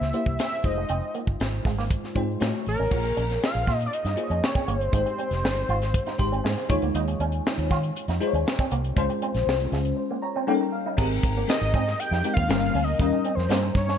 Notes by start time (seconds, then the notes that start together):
Already playing: A#3 E4 G4 C5 E5
0.01 C#2, snare, shaker
0.13 A#3 E4 G4 C5, closed hi-hat
0.26 C2, kick, shaker
0.38 C4 E5, snare, closed hi-hat, shaker
0.53 shaker
0.64 F1 G#3 D#4 F4 C5 D#5, muted clean electric guitar stroke, kick, closed hi-hat
0.77 G#3, shaker
0.89 F1 C4, closed hi-hat, shaker
1.01 shaker
1.14 A#3, closed hi-hat, shaker
1.26 G1, muted clean electric guitar stroke, kick, shaker
1.40 G#1, muted clean electric guitar stroke, snare, closed hi-hat, shaker
1.54 shaker
1.65 G#1 G#3, kick, snare, open hi-hat, shaker
1.78 A#3, snare, shaker
1.91 kick, closed hi-hat, shaker
2.04 snare, shaker
2.15 G#2 G#3 C4 D#4 F4 C5, kick, closed hi-hat, shaker
2.30 shaker
2.40 A2 A3 D#4 E4 F#4 C#5, snare, closed hi-hat, shaker
2.54 muted clean electric guitar stroke, shaker
2.66 A1 A#4, open hi-hat, shaker
2.79 A1 C#4, shaker
2.91 A#1 A#3 F4 G#4 C#5, kick, crash
3.04 muted clean electric guitar stroke, closed hi-hat
3.17 A#1 C#4, closed hi-hat
3.30 snare, closed hi-hat
3.44 F5, snare
3.55 A#1, closed hi-hat
3.67 A#2 F4, kick, snare, closed hi-hat
3.81 closed hi-hat
3.86 D5
3.93 D#5, closed hi-hat
4.05 G2 D#4, snare, closed hi-hat
4.16 A#3 F4 G#4 C5, muted clean electric guitar stroke, closed hi-hat
4.23 C#5
4.30 F2 C#4, closed hi-hat
4.43 C#5, muted clean electric guitar stroke, snare
4.55 C4, kick, closed hi-hat
4.68 G1 A#3 C5, closed hi-hat
4.81 closed hi-hat
4.92 G#1 G#3 D#4 G4 C5, kick, closed hi-hat
5.06 muted clean electric guitar stroke, closed hi-hat
5.18 C4, closed hi-hat
5.31 F1, snare, closed hi-hat
5.43 G1, snare
5.56 closed hi-hat
5.69 G#1 F4, closed hi-hat
5.82 snare, closed hi-hat
5.94 kick, closed hi-hat
6.06 D#4, snare, closed hi-hat
6.18 G#1 G#3 D#4 G4 C5, muted clean electric guitar stroke, kick, closed hi-hat
6.32 C4, closed hi-hat
6.44 G#2 G#3 G#5, snare
6.57 muted clean electric guitar stroke, closed hi-hat
6.69 D#2 G#3 D#4 F4 C#5, kick, closed hi-hat
6.82 D2 A#3, closed hi-hat
6.95 D#2 D#4, closed hi-hat, shaker
7.08 muted clean electric guitar stroke, closed hi-hat, shaker
7.20 D#2 C#4, closed hi-hat
7.32 closed hi-hat, shaker
7.46 snare, shaker
7.58 D#2, closed hi-hat, shaker
7.71 D#3 F4, kick, snare, closed hi-hat
7.83 closed hi-hat, shaker
7.96 closed hi-hat, shaker
8.08 F2 D#4, snare, closed hi-hat, shaker
8.20 G#3 D#4 F4 C5, muted clean electric guitar stroke, closed hi-hat
8.27 C#5
8.33 D#2 C#4, closed hi-hat, shaker
8.46 muted clean electric guitar stroke, snare, shaker
8.59 C4, kick, closed hi-hat, shaker
8.71 C2 A#3, closed hi-hat, shaker
8.84 closed hi-hat, shaker
8.96 C#2 G#3 C#4 F4 C5, kick, closed hi-hat, shaker
9.10 muted clean electric guitar stroke, closed hi-hat, shaker
9.22 C4, closed hi-hat
9.35 A#1, snare, closed hi-hat, shaker
9.47 C2, snare, shaker
9.60 closed hi-hat, shaker
9.72 C#2 G#3, snare, open hi-hat
9.85 closed hi-hat, shaker
9.97 C5
10.11 A#3
10.22 C#5 A#5, muted clean electric guitar stroke
10.36 C4
10.47 G3 A#3 C#4 D#4 A4 G5
10.54 A#4
10.61 muted clean electric guitar stroke
10.72 F5
10.86 D#4
10.97 G#1 G#3 C4 D#4 G4 A#4, kick, crash, shaker
11.11 shaker
11.23 G#1, muted clean electric guitar stroke, kick, closed hi-hat, shaker
11.35 A#3, shaker
11.47 G#3 C4 D#4 G4 A#4 D#5, snare, closed hi-hat, shaker
11.61 G#1, shaker
11.74 G#2 C4, kick, closed hi-hat
11.86 snare, shaker
11.99 G5, closed hi-hat, shaker
12.11 F2 D#4, snare, shaker
12.24 G#3 C4 D#4 G4 A#4, muted clean electric guitar stroke, closed hi-hat
12.33 D#2 A#3 F5, kick, shaker
12.48 G1 G3 A#3 C#4 F4 A#4, snare, closed hi-hat, shaker
12.59 F5, shaker
12.74 D2 C#4, open hi-hat, shaker
12.84 D#5, shaker
12.99 D#2 G3 C#4 D#4 F4 A#4, kick, closed hi-hat, shaker
13.12 muted clean electric guitar stroke, shaker
13.24 C4, closed hi-hat, shaker
13.35 F2 C5, snare, shaker
13.49 G2 G3 A#3 C#4 D#4 F4 A#4, snare, closed hi-hat, shaker
13.63 muted clean electric guitar stroke, shaker
13.75 G2 C#5, kick, snare, closed hi-hat
13.87 C#4, snare, shaker